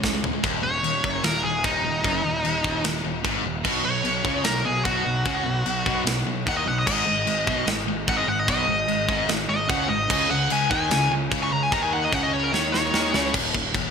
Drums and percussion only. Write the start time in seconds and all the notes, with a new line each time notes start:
0.04 kick, snare
0.24 floor tom
0.44 kick, china
0.84 china
1.04 kick
1.24 snare, china
1.64 kick, china
2.04 kick, china
2.45 china
2.64 kick
2.84 snare, china
3.24 kick, china
3.65 kick, crash, china
4.05 china
4.25 kick
4.44 snare, china
4.85 kick, china
5.25 kick, china
5.66 china
5.86 kick
6.07 snare, china
6.47 kick, china
6.87 kick, china, crash
7.27 china
7.47 kick
7.67 snare, china
8.08 kick, china
8.48 kick, china
8.88 china
9.09 kick
9.29 snare, china
9.70 kick, china
10.10 kick, crash, china
10.50 china
10.71 kick
10.91 snare, china
11.32 kick, china
11.72 kick, china
12.13 kick, china
12.54 snare
12.74 snare
12.94 snare
13.14 snare
13.34 kick, crash, china
13.54 kick
13.75 kick, china